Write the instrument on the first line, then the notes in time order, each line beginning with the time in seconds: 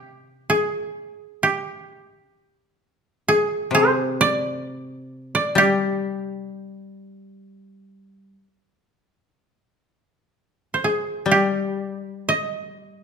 koto
Already playing: C3 G4 C5
0.50 G#4
1.43 G4
3.28 G#4
3.71 C3 C5
4.21 D5
5.35 D5
5.55 G3 G4
10.74 C5
10.84 G#4
11.26 G3
11.31 G4
12.29 D#5